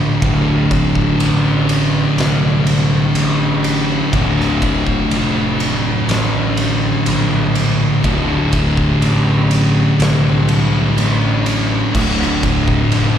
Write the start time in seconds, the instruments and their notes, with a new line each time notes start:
Already playing: distorted electric guitar D2 A2 D3
0.22 picked electric bass D1, distorted electric guitar D2 A2 D3, kick, ride
0.71 kick, ride
0.95 kick
1.19 picked electric bass A1, ride
1.69 ride
2.17 picked electric bass C2, snare, ride
2.67 ride
3.15 picked electric bass A1, ride
3.64 ride
4.12 picked electric bass D1, distorted electric guitar D2 A2 D3, kick, ride
4.40 snare
4.62 kick, ride
4.87 kick
5.10 picked electric bass F1, ride
5.60 ride
6.08 picked electric bass A1, snare, ride
6.57 ride
7.06 picked electric bass A#1, ride
7.55 ride
8.04 picked electric bass D1, distorted electric guitar D2 A2 D3, kick, ride
8.53 kick, ride
8.77 kick
9.00 picked electric bass A1, ride
9.51 ride
9.99 picked electric bass C2, snare, ride
10.49 ride
10.97 picked electric bass A1, ride
11.46 ride
11.94 picked electric bass D1, distorted electric guitar D2 A2 D3, kick, crash
12.22 snare
12.43 kick, ride
12.68 kick
12.91 picked electric bass F1, ride